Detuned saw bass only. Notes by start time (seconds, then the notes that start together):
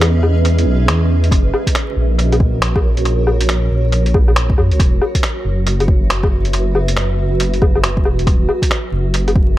Already playing: E2
0.23 E2
0.66 B1
0.88 E2
1.31 F#1
1.96 A#1
3.71 A#1
4.58 F#2
4.71 C#2
4.80 E1
5.45 F#1
7.18 F#1
8.05 E1
8.27 D#1
8.92 F#1